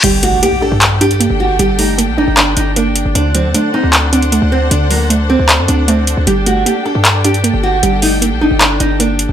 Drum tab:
CC |x---------------|----------------|----------------|----------------|
HH |x-x-x---x-xxx---|x-o-x---x-x-x-x-|x-x-x---x-xxx---|x-o-x---x-x-x-x-|
CP |--------x-------|--------x-------|--------x-------|--------x-------|

CC |----------------|----------------|
HH |x-x-x---x-xxx---|x-o-x---x-x-x-x-|
CP |--------x-------|--------x-------|